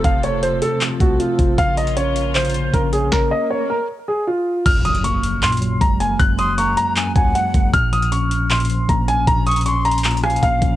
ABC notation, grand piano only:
X:1
M:4/4
L:1/8
Q:1/4=156
K:Bbm
V:1 name="Grand piano"
f d c =A z G F2 | f e d2 c2 B A | B e d B z A F2 | f' e' d'2 c'2 b a |
g' e' d' b z a g2 | f' e' d'2 c'2 b a | b e' d' b z a f2 |]